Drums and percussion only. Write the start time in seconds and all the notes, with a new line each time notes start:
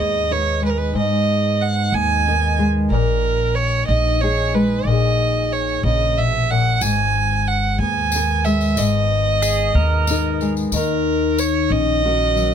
6.81 tambourine
8.12 tambourine
8.45 tambourine
8.61 tambourine
8.77 tambourine
9.42 tambourine
10.07 tambourine
10.41 tambourine
10.57 tambourine
10.72 tambourine
11.38 tambourine
12.37 tambourine